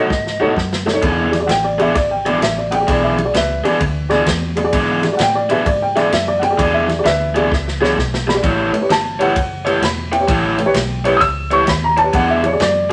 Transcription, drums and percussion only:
0.10 kick, snare
0.27 snare
0.56 kick, snare
0.73 snare
0.88 snare
1.02 kick, ride
1.33 snare, ride
1.49 snare, ride
1.79 ride
1.95 kick, snare, ride
2.26 ride
2.42 snare, ride
2.72 ride
2.88 kick, ride
3.18 ride
3.34 snare, ride
3.65 ride
3.80 kick, ride
4.11 snare, ride
4.26 kick, snare, ride
4.57 ride
4.73 kick, ride
5.03 snare, ride
5.19 snare, ride
5.49 ride
5.66 kick, ride
5.96 snare, ride
6.12 snare, ride
6.43 ride
6.59 kick, ride
6.89 snare, ride
7.05 snare, ride
7.36 ride
7.52 kick, snare
7.68 snare
7.84 snare
7.98 kick, snare
8.14 snare
8.29 snare
8.44 kick, ride
8.74 ride
8.90 snare, ride
9.20 ride
9.36 kick, ride
9.66 ride
9.83 snare, ride
10.13 ride
10.28 kick, ride
10.58 ride
10.74 snare, ride
11.05 ride
11.21 kick, snare, ride
11.51 ride
11.67 kick, snare, ride
11.97 ride
12.13 kick, ride
12.44 ride
12.60 snare, ride

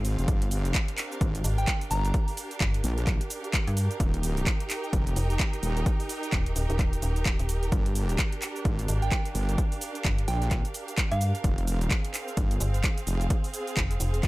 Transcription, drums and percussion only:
0.05 open hi-hat, cabasa
0.19 closed hi-hat, cabasa
0.28 kick, closed hi-hat, cabasa
0.42 closed hi-hat
0.51 open hi-hat, cabasa
0.65 closed hi-hat, cabasa
0.74 kick, clap, closed hi-hat, cabasa
0.88 closed hi-hat
0.98 clap, open hi-hat, cabasa
1.12 cabasa
1.21 kick, closed hi-hat, cabasa
1.35 closed hi-hat, cabasa
1.44 open hi-hat, cabasa
1.58 closed hi-hat, cabasa
1.68 kick, clap, closed hi-hat, cabasa
1.81 closed hi-hat, cabasa
1.91 open hi-hat, cabasa
2.05 closed hi-hat, cabasa
2.14 kick, closed hi-hat, cabasa
2.28 open hi-hat, cabasa
2.37 open hi-hat, cabasa
2.51 closed hi-hat, cabasa
2.61 kick, clap, closed hi-hat, cabasa
2.74 closed hi-hat
2.84 open hi-hat, cabasa
2.98 closed hi-hat, cabasa
3.07 kick, clap, closed hi-hat, cabasa
3.21 closed hi-hat, cabasa
3.30 open hi-hat, cabasa
3.44 closed hi-hat, cabasa
3.54 kick, clap, closed hi-hat, cabasa
3.67 closed hi-hat, cabasa
3.77 open hi-hat, cabasa
3.91 closed hi-hat, cabasa
4.00 kick, closed hi-hat, cabasa
4.14 closed hi-hat
4.23 open hi-hat, cabasa
4.37 closed hi-hat, cabasa
4.47 kick, clap, closed hi-hat, cabasa
4.60 closed hi-hat
4.70 clap, open hi-hat, cabasa
4.84 cabasa
4.93 kick, closed hi-hat, cabasa
5.07 closed hi-hat, cabasa
5.16 open hi-hat, cabasa
5.30 closed hi-hat, cabasa
5.40 kick, clap, closed hi-hat, cabasa
5.53 closed hi-hat, cabasa
5.63 open hi-hat, cabasa
5.77 closed hi-hat, cabasa
5.86 kick, closed hi-hat, cabasa
6.00 open hi-hat, cabasa
6.09 open hi-hat, cabasa
6.23 closed hi-hat, cabasa
6.33 kick, clap, closed hi-hat, cabasa
6.46 closed hi-hat
6.56 open hi-hat, cabasa
6.70 closed hi-hat, cabasa
6.79 kick, clap, closed hi-hat, cabasa
6.93 closed hi-hat, cabasa
7.02 open hi-hat, cabasa
7.16 closed hi-hat, cabasa
7.26 kick, clap, closed hi-hat, cabasa
7.39 closed hi-hat, cabasa
7.49 open hi-hat, cabasa
7.63 closed hi-hat, cabasa
7.72 kick, closed hi-hat, cabasa
7.86 closed hi-hat
7.95 open hi-hat, cabasa
8.09 closed hi-hat, cabasa
8.19 kick, clap, closed hi-hat, cabasa
8.32 closed hi-hat
8.42 clap, open hi-hat, cabasa
8.56 cabasa
8.65 kick, closed hi-hat, cabasa
8.79 closed hi-hat, cabasa
8.88 open hi-hat, cabasa
9.02 closed hi-hat, cabasa
9.12 kick, clap, closed hi-hat, cabasa
9.26 closed hi-hat, cabasa
9.35 open hi-hat, cabasa
9.49 closed hi-hat, cabasa
9.58 kick, closed hi-hat, cabasa
9.72 open hi-hat, cabasa
9.81 open hi-hat, cabasa
9.95 closed hi-hat, cabasa
10.05 kick, clap, closed hi-hat, cabasa
10.18 closed hi-hat
10.28 open hi-hat, cabasa
10.42 closed hi-hat, cabasa
10.51 kick, clap, closed hi-hat, cabasa
10.65 closed hi-hat, cabasa
10.74 open hi-hat, cabasa
10.88 closed hi-hat, cabasa
10.98 kick, clap, closed hi-hat, cabasa
11.12 closed hi-hat, cabasa
11.21 open hi-hat, cabasa
11.35 closed hi-hat, cabasa
11.44 kick, closed hi-hat, cabasa
11.58 closed hi-hat
11.67 open hi-hat, cabasa
11.81 closed hi-hat, cabasa
11.91 kick, clap, closed hi-hat, cabasa
12.05 closed hi-hat
12.14 clap, open hi-hat, cabasa
12.28 cabasa
12.37 kick, closed hi-hat, cabasa
12.51 closed hi-hat, cabasa
12.60 open hi-hat, cabasa
12.74 closed hi-hat, cabasa
12.84 kick, clap, closed hi-hat, cabasa
12.98 closed hi-hat, cabasa
13.07 open hi-hat, cabasa
13.21 closed hi-hat, cabasa
13.30 kick, closed hi-hat, cabasa
13.44 open hi-hat, cabasa
13.54 open hi-hat, cabasa
13.67 closed hi-hat, cabasa
13.77 kick, clap, closed hi-hat, cabasa
13.91 closed hi-hat, cabasa
14.00 open hi-hat, cabasa
14.14 closed hi-hat, cabasa
14.23 kick, clap, closed hi-hat, cabasa

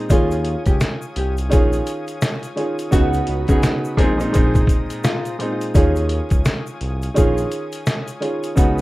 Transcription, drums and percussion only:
0.10 kick, closed hi-hat, shaker
0.31 closed hi-hat, shaker
0.45 closed hi-hat
0.66 kick, closed hi-hat, shaker
0.80 snare, closed hi-hat, shaker
1.02 shaker
1.16 closed hi-hat
1.37 closed hi-hat, shaker
1.52 kick, closed hi-hat, shaker
1.73 closed hi-hat, shaker
1.87 closed hi-hat, shaker
2.08 closed hi-hat, shaker
2.22 snare, closed hi-hat, shaker
2.43 closed hi-hat, shaker
2.57 closed hi-hat
2.79 closed hi-hat, shaker
2.92 kick, closed hi-hat, shaker
3.13 closed hi-hat, shaker
3.27 closed hi-hat
3.48 kick, closed hi-hat, shaker
3.63 snare, closed hi-hat, shaker
3.85 shaker
3.98 kick, closed hi-hat
4.20 closed hi-hat, shaker
4.34 kick, closed hi-hat, shaker
4.55 kick, closed hi-hat, shaker
4.67 kick, closed hi-hat, shaker
4.90 closed hi-hat, shaker
5.04 snare, closed hi-hat, shaker
5.25 closed hi-hat, shaker
5.40 closed hi-hat
5.61 closed hi-hat, shaker
5.75 kick, closed hi-hat, shaker
5.96 closed hi-hat, shaker
6.09 closed hi-hat
6.30 kick, closed hi-hat, shaker
6.45 snare, closed hi-hat, shaker
6.67 shaker
6.81 closed hi-hat
7.02 closed hi-hat, shaker
7.16 kick, closed hi-hat, shaker
7.37 closed hi-hat, shaker
7.52 closed hi-hat, shaker
7.72 closed hi-hat, shaker
7.86 snare, closed hi-hat, shaker
8.08 closed hi-hat, shaker
8.22 closed hi-hat
8.43 closed hi-hat, shaker
8.57 kick, closed hi-hat, shaker
8.78 shaker

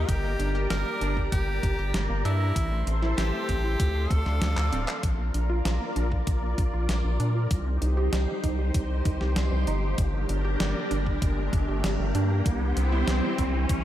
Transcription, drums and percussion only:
0.09 kick, closed hi-hat
0.40 closed hi-hat
0.70 snare, closed hi-hat
1.01 closed hi-hat
1.17 kick
1.32 kick, closed hi-hat
1.63 kick, closed hi-hat
1.94 snare, closed hi-hat
2.25 closed hi-hat
2.56 kick, closed hi-hat
2.87 closed hi-hat
3.03 snare
3.18 snare, closed hi-hat
3.49 kick, closed hi-hat
3.80 kick, closed hi-hat
4.11 kick, closed hi-hat
4.26 snare
4.42 snare, closed hi-hat
4.57 clap
4.73 closed hi-hat
4.88 clap
5.03 kick, closed hi-hat
5.34 closed hi-hat
5.65 snare, closed hi-hat
5.96 closed hi-hat
6.12 kick
6.27 kick, closed hi-hat
6.58 kick, closed hi-hat
6.89 snare, closed hi-hat
7.20 closed hi-hat
7.51 kick, closed hi-hat
7.82 closed hi-hat
8.13 snare, closed hi-hat
8.44 kick, closed hi-hat
8.74 kick, closed hi-hat
9.05 kick, closed hi-hat
9.21 snare
9.36 snare, closed hi-hat
9.67 closed hi-hat
9.98 kick, closed hi-hat
10.29 closed hi-hat
10.60 snare, closed hi-hat
10.91 closed hi-hat
11.07 kick
11.22 kick, closed hi-hat
11.53 kick, closed hi-hat
11.84 snare, closed hi-hat
12.15 closed hi-hat
12.46 kick, closed hi-hat
12.77 closed hi-hat
13.08 snare, closed hi-hat
13.38 kick, closed hi-hat
13.69 kick, closed hi-hat

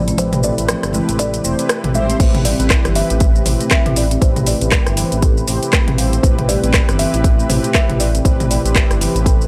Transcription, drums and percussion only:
0.08 closed hi-hat, high conga, shaker
0.18 kick, closed hi-hat, low conga, shaker
0.33 closed hi-hat, mid tom, shaker
0.43 high conga, shaker
0.58 closed hi-hat, shaker
0.69 kick, cross-stick, closed hi-hat, low conga, shaker
0.83 cross-stick, closed hi-hat, shaker
0.93 high conga, shaker
1.09 closed hi-hat, shaker
1.19 kick, closed hi-hat, high conga, shaker
1.34 closed hi-hat, shaker
1.44 shaker
1.59 closed hi-hat, shaker
1.69 kick, cross-stick, closed hi-hat, shaker
1.84 closed hi-hat, mid tom
1.94 high conga, shaker
2.10 closed hi-hat, shaker
2.20 kick, closed hi-hat, crash, shaker
2.35 closed hi-hat, mid tom
2.45 open hi-hat, shaker
2.60 closed hi-hat, shaker
2.70 kick, cross-stick, clap, closed hi-hat, shaker
2.85 cross-stick, closed hi-hat, shaker
2.95 open hi-hat, shaker
3.10 closed hi-hat, shaker
3.20 kick, closed hi-hat, shaker
3.35 shaker
3.46 mid tom, open hi-hat, shaker
3.61 closed hi-hat, shaker
3.71 kick, cross-stick, clap, closed hi-hat, shaker
3.86 closed hi-hat, mid tom
3.96 open hi-hat, shaker
4.11 closed hi-hat, shaker
4.22 kick, closed hi-hat, shaker
4.36 closed hi-hat, mid tom, shaker
4.47 open hi-hat, shaker
4.61 closed hi-hat, shaker
4.72 kick, cross-stick, clap, closed hi-hat, shaker
4.87 cross-stick, closed hi-hat, shaker
4.97 open hi-hat, shaker
5.12 closed hi-hat, shaker
5.22 kick, closed hi-hat, shaker
5.37 shaker
5.48 open hi-hat, shaker
5.63 closed hi-hat, shaker
5.73 kick, cross-stick, clap, closed hi-hat, shaker
5.88 closed hi-hat, mid tom
5.98 open hi-hat, shaker
6.13 closed hi-hat, shaker
6.23 kick, closed hi-hat, shaker
6.39 closed hi-hat, mid tom
6.49 open hi-hat, shaker
6.64 closed hi-hat, shaker
6.74 kick, cross-stick, clap, closed hi-hat, shaker
6.89 cross-stick, closed hi-hat, shaker
6.99 open hi-hat, shaker
7.14 closed hi-hat, shaker
7.24 kick, closed hi-hat, shaker
7.39 shaker
7.50 mid tom, open hi-hat, shaker
7.64 closed hi-hat, shaker
7.75 kick, cross-stick, clap, closed hi-hat, shaker
7.90 closed hi-hat, mid tom
8.00 open hi-hat, shaker
8.15 closed hi-hat, shaker
8.25 kick, closed hi-hat, shaker
8.40 closed hi-hat, mid tom, shaker
8.51 open hi-hat, shaker
8.66 closed hi-hat, shaker
8.75 kick, cross-stick, clap, closed hi-hat, shaker
8.91 cross-stick, closed hi-hat, shaker
9.01 open hi-hat, shaker
9.16 closed hi-hat, shaker
9.26 kick, closed hi-hat, shaker
9.41 shaker

